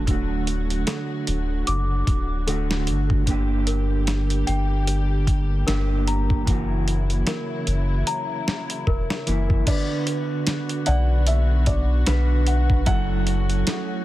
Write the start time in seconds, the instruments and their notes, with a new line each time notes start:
Already playing: sub bass D1, string section D3 F#3 A3 F#4, celesta A4 F#5 A5
0.06 clean electric guitar D3 A3, kick, closed hi-hat
0.11 clean electric guitar F#4
0.47 closed hi-hat
0.70 closed hi-hat
0.87 celesta A4, snare, closed hi-hat
1.27 sub bass D1, closed hi-hat
1.67 sub bass F#1, celesta D6, closed hi-hat
2.07 sub bass D1, kick, closed hi-hat
2.47 clean electric guitar D3 A3 F#4, celesta A4, closed hi-hat
2.71 snare
2.87 sub bass G1, closed hi-hat
3.10 kick
3.26 clean electric guitar D3 A#3, string section G3 A#3 G4, kick, closed hi-hat
3.31 clean electric guitar G4
3.67 celesta A#4, closed hi-hat
4.07 snare, closed hi-hat
4.30 closed hi-hat
4.47 sub bass G1, celesta G5, closed hi-hat
4.87 closed hi-hat
5.27 kick, closed hi-hat
5.67 sub bass G1, clean electric guitar D3 A#3 G4, celesta A#4, snare, closed hi-hat
6.07 celesta A#5, closed hi-hat
6.30 kick
6.45 sub bass F#1, string section C#3 F#3 E4, clean electric guitar E3 A#3, kick, closed hi-hat
6.50 clean electric guitar F#4
6.88 closed hi-hat
7.10 closed hi-hat
7.27 celesta A#4, snare, closed hi-hat
7.67 sub bass F#1, closed hi-hat
8.07 celesta A#5, closed hi-hat
8.48 snare
8.70 closed hi-hat
8.87 sub bass E1, celesta A#4, kick
9.10 snare
9.26 sub bass F#1, clean electric guitar E3 A#3 E4, closed hi-hat
9.50 kick
9.65 clean electric guitar D3, string section D3 B3 F#4, felt piano D5, kick, closed hi-hat, crash
9.70 clean electric guitar B4
10.07 celesta B4, closed hi-hat
10.47 snare, closed hi-hat
10.69 closed hi-hat
10.86 sub bass B1, celesta D5, felt piano F#5, closed hi-hat
11.27 felt piano E5, closed hi-hat
11.66 felt piano D5, kick, closed hi-hat
12.07 sub bass B1, clean electric guitar D3 B4, celesta B4, snare, closed hi-hat
12.47 celesta F#5, closed hi-hat
12.70 kick
12.86 sub bass F#1, clean electric guitar F#3 E4, string section A3 C#4, felt piano F#5, kick, closed hi-hat
12.90 clean electric guitar A4
13.27 closed hi-hat
13.50 closed hi-hat
13.67 celesta A4, snare, closed hi-hat